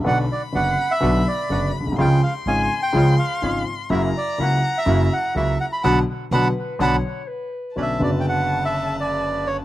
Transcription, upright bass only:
X:1
M:4/4
L:1/16
Q:1/4=125
K:Bm
V:1 name="Upright bass" clef=bass
B,,,3/2 z2 z/2 F,,,3/2 z2 z/2 B,,,3/2 z2 z/2 F,,,3/2 z ^A,,,/2 B,,,/2 =C,,/2 | C,,3/2 z2 z/2 ^G,,,3/2 z2 z/2 C,,3/2 z2 z/2 G,,,3/2 z2 z/2 | F,,,3/2 z2 z/2 C,,3/2 z2 z/2 F,,,3/2 z2 z/2 C,,3/2 z2 z/2 | B,,,3/2 z2 z/2 B,,,3/2 z2 z/2 B,,,3/2 z6 z/2 |
B,,,3/2 z/2 F,,,12- F,,,3/2 z/2 |]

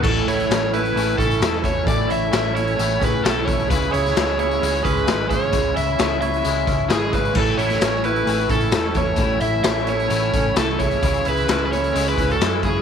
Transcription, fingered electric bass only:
X:1
M:4/4
L:1/8
Q:1/4=131
K:A
V:1 name="Fingered electric bass" clef=bass
A,,, A,,, A,,,2 A,,, A,,, E,,,2 | A,,, A,,, A,,,2 A,,, A,,, B,,,2 | C,, C,, C,,2 C,, C,, G,,,2 | C,, C,, C,,2 C,, C,, G,,,2 |
A,,, A,,, A,,,2 A,,, A,,, E,,,2 | A,,, A,,, A,,,2 A,,, A,,, =C,,2 | C,, C,, C,,2 C,, C,, F,,2 |]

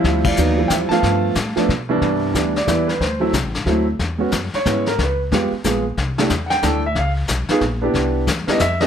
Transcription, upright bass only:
X:1
M:3/4
L:1/8
Q:"Swing" 1/4=182
K:C
V:1 name="Upright bass" clef=bass
D,,2 _E,,2 =E,, z | G,,2 A,, z B,,2 | G,,2 D,,2 E,,2 | D,,2 (3C,, A,,, ^F,,, D,,2 |
E,,2 ^F,, z ^G,,2 | _D,,2 F,, z _B,,,2 | C,,2 E,,2 D,,2 | _D,,2 _C,, z _B,,,2 |
C,,2 E,, z F,,2 |]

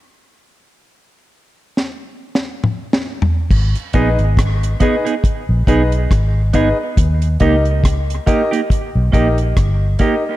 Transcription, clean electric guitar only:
X:1
M:4/4
L:1/16
Q:"Swing 16ths" 1/4=69
K:G#m
V:1 name="Clean electric guitar"
z16 | z2 [B,DG] z3 [B,DG] [B,DG] z2 [B,DG] z3 [B,DG] z | z2 [A,D=G] z3 [A,DG] [A,DG] z2 [A,DG] z3 [A,DG] z |]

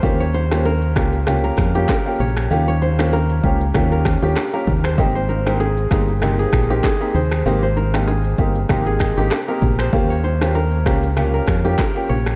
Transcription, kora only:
X:1
M:4/4
L:1/16
Q:"Swing 16ths" 1/4=97
K:Ab
V:1 name="Kora"
z d c z B2 z3 B z G B z d z | z d c z B2 z3 B z G z B z c | z c B z A2 z3 A z G A z c z | z c B z A2 z3 A z G z B z c |
z d c z B2 z3 B z G B z d z |]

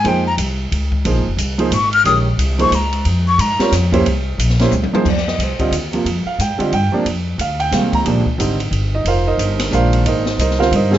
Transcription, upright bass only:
X:1
M:3/4
L:1/8
Q:"Swing" 1/4=180
K:Bbdor
V:1 name="Upright bass" clef=bass
F,,2 C,,2 D,,2 | (3B,,, A,,, F,,, C,,2 A,,,2 | B,,,2 C,,2 D,,2 | F,,2 A,, z F,,2 |
C,,2 B,,,2 D,, z | [K:Fdor] F,,2 C,, z E,,2 | F,, z A,, z G,, z | F,,2 D,,2 C,, z |
B,,, z A,,,2 G,,,2 | F,,,2 G,,,2 B,,,2 | A,,,2 C,,2 G,,2 |]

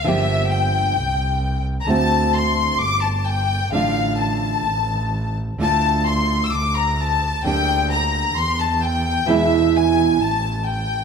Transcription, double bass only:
X:1
M:4/4
L:1/8
Q:1/4=131
K:Dm
V:1 name="Double bass" clef=bass
G,,,4 C,,4 | D,,4 G,,,4 | A,,,4 A,,,4 | D,,4 D,,4 |
D,,4 E,,4 | E,,4 A,,,4 |]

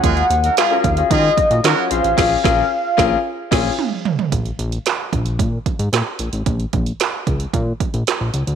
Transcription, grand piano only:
X:1
M:4/4
L:1/16
Q:1/4=112
K:Bbm
V:1 name="Grand piano"
z4 z [DFGB] z [DFGA]2 z2 [GB] [DFGd]2 [DFAc]2 | [DFA]2 [DFAB]2 z2 [DFAB]2 z2 [DFA]2 z4 | z16 | z16 |]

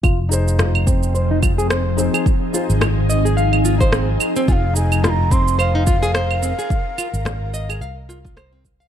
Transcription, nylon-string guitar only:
X:1
M:4/4
L:1/16
Q:"Swing 16ths" 1/4=108
K:Fm
V:1 name="Nylon-string guitar"
F z3 F2 C2 c E F A c2 C A | z2 F z3 e A f2 F c C z2 C | F z3 F2 C2 c E F A c2 C A | z2 F z3 e A f z F F c C z f |]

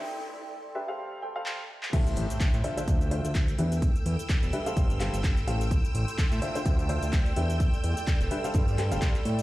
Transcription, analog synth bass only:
X:1
M:4/4
L:1/16
Q:"Swing 16ths" 1/4=127
K:Am
V:1 name="Analog synth bass" clef=bass
z16 | z2 A,,, z2 A,, z2 D,,3 D,,3 E,,2- | E,, z E,, z2 E,,, z2 G,,,3 G,,,3 A,,,2- | A,,, z A,,, z2 A,, z2 D,,3 D,,3 E,,2- |
E,, z E,, z2 E,,, z2 G,,3 F,,, z2 A,,2 |]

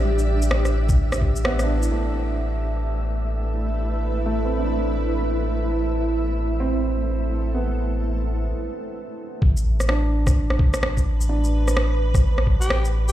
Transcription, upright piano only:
X:1
M:4/4
L:1/16
Q:"Swing 16ths" 1/4=128
K:C
V:1 name="Upright piano"
G,4- G, z6 z B, D E2 | A,4- A, z8 z3 | z4 A, C D4- D z4 z | z8 C4- C z3 |
B,4- B, z8 z3 | z4 D4- D z6 z | D4- D z8 z3 |]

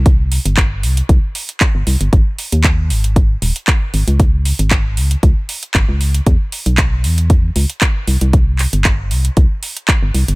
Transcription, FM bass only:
X:1
M:4/4
L:1/16
Q:"Swing 16ths" 1/4=116
K:Cphr
V:1 name="FM bass" clef=bass
C,,3 G,,,3 C,, z C,, z4 G,,, C,, G,,, | A,,, z2 E,,3 A,,,4 E,,, z3 A,,, D,,- | D,,3 A,,,3 D,, z D,, z3 A,,, D,,3 | =E,, z2 =B,,,3 E,,4 D,, z3 C,, C,,- |
C,,3 G,,,3 C,, z C,, z4 G,,, C,, G,,, |]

